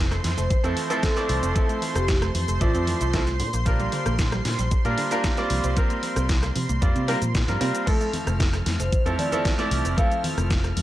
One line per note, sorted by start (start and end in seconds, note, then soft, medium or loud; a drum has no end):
0.00 0.18 F1 loud
0.00 0.60 F3 medium
0.00 0.61 A3 medium
0.00 0.61 C4 medium
0.00 0.61 E4 medium
0.00 0.61 A4 medium
0.00 7.88 C5 medium
0.00 7.88 C6 medium
0.11 0.15 A3 loud
0.11 cross-stick medium
0.11 closed hi-hat soft
0.11 cabasa soft
0.24 0.34 F2 medium
0.24 0.31 E3 medium
0.24 snare medium
0.24 open hi-hat loud
0.37 0.47 F1 medium
0.37 0.47 A3 medium
0.37 0.59 C5 medium
0.37 closed hi-hat soft
0.37 cabasa medium
0.50 0.57 E3 medium
0.50 kick loud
0.50 closed hi-hat medium
0.50 cabasa medium
0.64 0.73 F2 medium
0.64 0.87 F3 medium
0.64 0.87 A3 medium
0.64 0.74 C4 loud
0.64 0.87 C4 medium
0.64 0.87 E4 medium
0.64 0.87 A4 medium
0.64 closed hi-hat soft
0.64 cabasa soft
0.76 0.83 E3 medium
0.76 open hi-hat loud
0.90 1.13 F3 medium
0.90 1.13 A3 medium
0.90 1.13 C4 medium
0.90 0.94 E4 medium
0.90 1.13 E4 medium
0.90 1.14 A4 loud
0.90 closed hi-hat soft
0.90 cabasa medium
1.03 1.10 E3 medium
1.03 1.77 A4 medium
1.03 kick loud
1.03 snare loud
1.03 closed hi-hat medium
1.03 cabasa medium
1.16 1.52 F3 loud
1.16 1.20 A3 medium
1.16 1.52 A3 medium
1.16 1.53 C4 medium
1.16 1.53 E4 medium
1.16 1.53 D5 loud
1.16 closed hi-hat soft
1.16 cabasa soft
1.29 1.39 C2 medium
1.29 1.40 E3 medium
1.29 open hi-hat medium
1.43 1.52 F1 medium
1.43 1.53 C4 medium
1.43 closed hi-hat soft
1.43 cabasa medium
1.55 1.62 E3 medium
1.55 2.57 F3 medium
1.55 2.58 A3 medium
1.55 2.58 C4 medium
1.55 2.58 E4 medium
1.55 2.58 A4 medium
1.55 kick loud
1.55 closed hi-hat medium
1.55 cabasa medium
1.69 1.79 A3 loud
1.69 closed hi-hat soft
1.69 cabasa soft
1.82 1.89 E3 medium
1.82 open hi-hat loud
1.95 2.29 F1 loud
1.95 1.99 C4 medium
1.95 2.17 G4 medium
1.95 cross-stick medium
1.95 closed hi-hat soft
1.95 cabasa medium
2.08 2.15 E3 medium
2.08 kick loud
2.08 snare loud
2.08 closed hi-hat medium
2.08 cabasa medium
2.22 2.26 A3 loud
2.22 cross-stick medium
2.22 closed hi-hat soft
2.22 cabasa soft
2.35 2.44 F2 medium
2.35 2.42 E3 medium
2.35 open hi-hat medium
2.48 2.57 F1 medium
2.48 2.58 A3 medium
2.48 closed hi-hat soft
2.48 cabasa medium
2.61 2.71 A1 loud
2.61 2.68 E3 medium
2.61 3.10 F3 medium
2.61 3.11 A3 medium
2.61 3.11 C4 medium
2.61 3.35 F4 medium
2.61 3.11 D5 medium
2.61 3.11 E5 medium
2.61 kick loud
2.61 closed hi-hat medium
2.61 cabasa medium
2.75 2.93 F2 loud
2.75 2.84 C4 loud
2.75 closed hi-hat soft
2.75 cabasa soft
2.87 2.94 E3 medium
2.87 open hi-hat loud
3.01 3.41 C2 medium
3.01 3.05 E4 medium
3.01 closed hi-hat soft
3.01 cabasa medium
3.13 3.20 E3 medium
3.13 3.22 F3 medium
3.13 3.22 A3 medium
3.13 3.22 C4 medium
3.13 3.22 E4 medium
3.13 3.22 A4 loud
3.13 kick loud
3.13 snare loud
3.13 closed hi-hat medium
3.13 cabasa medium
3.27 3.31 A3 medium
3.27 closed hi-hat soft
3.27 cabasa soft
3.40 3.50 A#2 loud
3.40 3.50 D3 medium
3.40 open hi-hat medium
3.53 3.87 A#1 medium
3.53 3.63 A#3 medium
3.53 closed hi-hat soft
3.53 cabasa medium
3.65 3.73 D3 medium
3.65 4.81 G3 medium
3.65 4.82 A#3 medium
3.65 4.82 D4 medium
3.65 4.82 F4 medium
3.65 4.82 A#4 medium
3.65 kick loud
3.65 closed hi-hat medium
3.65 cabasa medium
3.80 3.90 G3 loud
3.80 closed hi-hat soft
3.80 cabasa soft
3.92 4.00 D3 medium
3.92 open hi-hat loud
4.06 4.39 A#1 loud
4.06 4.10 A#3 medium
4.06 cross-stick medium
4.06 closed hi-hat soft
4.06 cabasa medium
4.19 4.26 D3 medium
4.19 kick loud
4.19 snare loud
4.19 closed hi-hat medium
4.19 cabasa medium
4.32 4.36 G3 loud
4.32 cross-stick medium
4.32 closed hi-hat soft
4.32 cabasa soft
4.45 4.55 A#2 loud
4.45 4.52 D3 medium
4.45 snare medium
4.45 open hi-hat medium
4.59 4.68 A#1 medium
4.59 4.69 G3 medium
4.59 closed hi-hat soft
4.59 cabasa medium
4.71 4.79 D3 medium
4.71 kick loud
4.71 closed hi-hat medium
4.71 cabasa medium
4.85 4.94 A#2 medium
4.85 5.08 G3 medium
4.85 5.08 A#3 medium
4.85 4.95 A#3 loud
4.85 5.08 D4 medium
4.85 5.08 F4 medium
4.85 5.08 A#4 medium
4.85 closed hi-hat soft
4.85 cabasa soft
4.98 5.05 D3 medium
4.98 open hi-hat loud
5.11 5.34 G3 medium
5.11 5.34 A#3 medium
5.11 5.15 D4 medium
5.11 5.35 D4 medium
5.11 5.35 F4 medium
5.11 5.35 A#4 loud
5.11 closed hi-hat soft
5.11 cabasa medium
5.24 5.31 D3 medium
5.24 kick loud
5.24 snare loud
5.24 closed hi-hat medium
5.24 cabasa medium
5.37 5.73 G3 loud
5.37 5.42 G3 medium
5.37 5.74 A#3 medium
5.37 5.74 C4 medium
5.37 5.74 F4 medium
5.37 5.74 D5 loud
5.37 closed hi-hat soft
5.37 cabasa soft
5.50 5.60 C2 medium
5.50 5.61 F3 medium
5.50 open hi-hat medium
5.64 5.73 C2 medium
5.64 5.74 C4 medium
5.64 closed hi-hat soft
5.64 cabasa medium
5.76 5.84 F3 medium
5.76 6.79 G3 medium
5.76 6.79 A#3 medium
5.76 6.79 C4 medium
5.76 6.79 F4 medium
5.76 6.79 A#4 medium
5.76 kick loud
5.76 closed hi-hat medium
5.76 cabasa medium
5.90 6.00 A#3 loud
5.90 closed hi-hat soft
5.90 cabasa soft
6.03 6.10 F3 medium
6.03 open hi-hat loud
6.16 6.50 C2 loud
6.16 6.21 C4 medium
6.16 cross-stick medium
6.16 closed hi-hat soft
6.16 cabasa medium
6.29 6.36 F3 medium
6.29 kick loud
6.29 snare loud
6.29 closed hi-hat medium
6.29 cabasa medium
6.43 6.47 A#3 loud
6.43 cross-stick medium
6.43 closed hi-hat soft
6.43 cabasa soft
6.56 6.66 C3 medium
6.56 6.63 F3 medium
6.56 open hi-hat medium
6.69 6.78 C2 medium
6.69 6.79 A#3 medium
6.69 closed hi-hat soft
6.69 cabasa medium
6.81 6.92 F2 loud
6.81 6.89 F3 medium
6.81 7.06 G3 medium
6.81 7.06 A#3 medium
6.81 7.06 C4 medium
6.81 7.06 F4 medium
6.81 7.06 D5 medium
6.81 kick loud
6.81 closed hi-hat medium
6.81 cabasa medium
6.96 7.14 C3 loud
6.96 7.05 C4 loud
6.96 closed hi-hat soft
6.96 cabasa soft
7.08 7.16 G3 loud
7.08 7.15 G3 loud
7.08 7.16 A#3 medium
7.08 7.17 C4 medium
7.08 7.17 F4 medium
7.08 7.17 A#4 loud
7.08 open hi-hat loud
7.22 7.48 A#2 medium
7.22 7.26 F3 medium
7.22 closed hi-hat soft
7.22 cabasa medium
7.35 7.45 G3 loud
7.35 kick loud
7.35 snare loud
7.35 closed hi-hat medium
7.35 cabasa medium
7.48 7.57 G2 medium
7.48 7.55 F3 medium
7.48 7.58 G3 medium
7.48 7.58 A#3 medium
7.48 7.58 C4 medium
7.48 7.58 F4 medium
7.48 7.58 A#4 medium
7.48 closed hi-hat soft
7.48 cabasa soft
7.60 7.71 C3 medium
7.60 7.84 G3 medium
7.60 7.84 A#3 medium
7.60 7.84 C4 medium
7.60 7.71 C4 loud
7.60 7.84 F4 medium
7.60 7.84 A#4 medium
7.60 open hi-hat medium
7.75 7.84 G4 medium
7.75 closed hi-hat soft
7.75 cabasa medium
7.86 7.94 E3 medium
7.86 9.02 F3 medium
7.86 10.82 F3 medium
7.86 9.02 A3 medium
7.86 9.03 C4 medium
7.86 9.03 E4 medium
7.86 8.09 A4 medium
7.86 9.03 A4 medium
7.86 10.82 F6 medium
7.86 kick loud
7.86 closed hi-hat medium
7.86 crash medium
7.86 high conga medium
7.86 cabasa medium
8.01 8.11 A3 loud
8.01 closed hi-hat soft
8.01 cabasa soft
8.13 8.21 E3 medium
8.13 open hi-hat loud
8.13 low conga medium
8.27 8.60 F1 loud
8.27 8.31 C4 medium
8.27 cross-stick medium
8.27 closed hi-hat soft
8.27 high conga medium
8.27 cabasa medium
8.40 8.50 A3 loud
8.40 kick loud
8.40 snare loud
8.40 closed hi-hat medium
8.40 cabasa medium
8.53 8.57 A3 loud
8.53 cross-stick medium
8.53 closed hi-hat soft
8.53 cabasa soft
8.66 8.76 F2 loud
8.66 8.73 E3 medium
8.66 snare medium
8.66 open hi-hat medium
8.66 high conga medium
8.80 8.89 F1 medium
8.80 8.90 A3 medium
8.80 9.01 C5 medium
8.80 closed hi-hat soft
8.80 cabasa medium
8.92 8.99 E3 medium
8.92 kick loud
8.92 closed hi-hat medium
8.92 cabasa medium
9.06 9.15 F2 medium
9.06 9.29 F3 medium
9.06 9.29 A3 medium
9.06 9.29 C4 medium
9.06 9.16 C4 loud
9.06 9.29 E4 medium
9.06 9.29 A4 medium
9.06 closed hi-hat soft
9.06 high conga medium
9.06 cabasa soft
9.19 9.26 E3 medium
9.19 9.40 D5 loud
9.19 open hi-hat loud
9.19 low conga medium
9.32 9.55 F3 medium
9.32 9.55 A3 medium
9.32 9.56 C4 medium
9.32 9.36 E4 medium
9.32 9.56 E4 medium
9.32 9.56 A4 loud
9.32 closed hi-hat soft
9.32 low conga loud
9.32 cabasa medium
9.45 9.52 E3 medium
9.45 kick loud
9.45 snare loud
9.45 closed hi-hat medium
9.45 cabasa medium
9.58 9.95 F3 medium
9.58 9.95 A3 medium
9.58 9.63 A3 medium
9.58 9.95 C4 medium
9.58 9.95 E4 medium
9.58 9.95 D5 loud
9.58 closed hi-hat soft
9.58 high conga loud
9.58 cabasa soft
9.71 9.81 C2 medium
9.71 9.82 E3 medium
9.71 open hi-hat medium
9.85 9.94 F1 medium
9.85 9.95 C4 medium
9.85 closed hi-hat soft
9.85 muted conga medium
9.85 cabasa medium
9.97 10.05 E3 medium
9.97 10.82 F3 medium
9.97 10.82 A3 medium
9.97 10.82 C4 medium
9.97 10.82 E4 medium
9.97 10.82 A4 medium
9.97 10.19 F5 medium
9.97 kick loud
9.97 closed hi-hat medium
9.97 high conga medium
9.97 cabasa medium
10.11 10.21 A3 loud
10.11 closed hi-hat soft
10.11 muted conga soft
10.11 cabasa soft
10.24 10.31 E3 medium
10.24 open hi-hat loud
10.24 muted conga soft
10.24 low conga medium
10.38 10.71 F1 loud
10.38 10.41 C4 medium
10.38 cross-stick medium
10.38 closed hi-hat soft
10.38 high conga medium
10.38 cabasa medium
10.50 10.61 A3 loud
10.50 kick loud
10.50 snare loud
10.50 closed hi-hat medium
10.50 cabasa medium
10.64 10.68 A3 loud
10.64 cross-stick medium
10.64 closed hi-hat soft
10.64 cabasa soft
10.77 10.82 F2 loud
10.77 10.82 E3 medium
10.77 open hi-hat loud
10.77 high conga loud